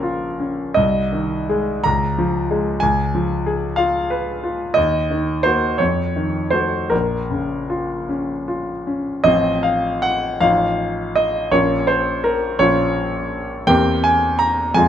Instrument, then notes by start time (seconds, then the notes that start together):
grand piano
Already playing: A#1 C#3 C#4 F4 A#4 C5
0.03 F4
0.40 C#4
0.74 C2 D#5
1.12 D#3
1.49 G#3 G#4
1.84 C#2 A#5
2.18 F3
2.50 G#3 G#4
2.80 C#2 G#5
3.15 F3
3.46 G#4
3.76 F4 F5
4.10 B4
4.44 F4
4.74 D#2 D#5
5.11 D#3
5.43 A#3 F#4 C5
5.78 F2 C#5
6.16 D#3
6.50 A3 F#4 C5
6.90 A#1 A#4
7.30 C#3
7.70 F4
8.09 C#4
8.48 F4
8.87 C#4
9.24 A1 F3 C4 F4 D#5
9.63 F5
10.02 F#5
10.41 A1 F3 D#4 F4 F5
11.16 D#5
11.51 A#1 A#3 C#4 F4 C#5
11.87 C5
12.24 A#4
12.59 A#1 A#3 C#4 F4 C#5
13.67 E2 A#3 C4 G4 G5
14.04 G#5
14.39 A#5
14.74 F2 G#3 C4 F4 G#5